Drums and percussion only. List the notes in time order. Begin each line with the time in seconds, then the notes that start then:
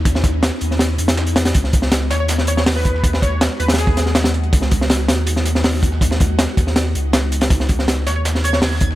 0.05 kick, closed hi-hat
0.15 snare
0.24 kick, snare, closed hi-hat
0.43 snare, closed hi-hat
0.61 closed hi-hat
0.71 snare
0.79 snare, closed hi-hat, open hi-hat
0.98 closed hi-hat
1.08 snare, closed hi-hat
1.17 snare, closed hi-hat
1.27 closed hi-hat
1.36 snare, closed hi-hat
1.45 snare, closed hi-hat
1.54 kick, closed hi-hat
1.64 snare
1.73 kick, closed hi-hat
1.82 snare
1.91 snare, closed hi-hat
2.11 snare, closed hi-hat
2.28 snare, closed hi-hat
2.38 snare
2.47 closed hi-hat
2.57 snare
2.66 snare, closed hi-hat, open hi-hat
2.76 snare
2.85 kick, closed hi-hat
2.95 snare
3.04 kick, closed hi-hat
3.13 snare
3.22 kick, snare, closed hi-hat
3.41 snare, closed hi-hat
3.60 closed hi-hat
3.68 snare, closed hi-hat
3.74 snare, closed hi-hat
3.78 closed hi-hat, open hi-hat
3.87 kick
3.97 snare, closed hi-hat
4.06 snare
4.15 snare, closed hi-hat
4.24 snare, closed hi-hat
4.34 closed hi-hat
4.44 closed hi-hat
4.53 kick, closed hi-hat
4.62 snare
4.71 kick, closed hi-hat
4.81 snare
4.90 snare, closed hi-hat
5.08 snare, closed hi-hat
5.27 closed hi-hat
5.36 snare
5.45 closed hi-hat
5.55 snare
5.64 snare, closed hi-hat, open hi-hat
5.74 snare
5.83 kick, closed hi-hat
5.92 snare
6.01 kick, closed hi-hat
6.11 snare
6.20 kick, snare, closed hi-hat
6.39 snare, closed hi-hat
6.57 kick, closed hi-hat
6.67 snare
6.76 snare, closed hi-hat, open hi-hat
6.95 closed hi-hat
7.13 snare, closed hi-hat
7.32 closed hi-hat
7.41 snare, closed hi-hat
7.50 kick, closed hi-hat
7.60 snare
7.69 kick, closed hi-hat
7.79 snare
7.88 snare, closed hi-hat
8.07 snare, closed hi-hat
8.25 snare, closed hi-hat
8.35 snare
8.44 closed hi-hat
8.53 snare
8.62 snare, closed hi-hat, open hi-hat
8.71 snare
8.80 kick, closed hi-hat
8.91 snare